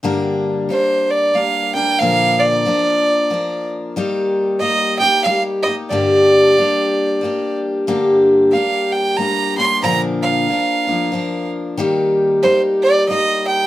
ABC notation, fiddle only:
X:1
M:3/4
L:1/8
Q:"Swing" 1/4=92
K:Gm
V:1 name="Fiddle"
z2 c d f g | f d4 z | z2 e g f e | d4- d z |
z2 f g b c' | b f4 z | z2 c d e g |]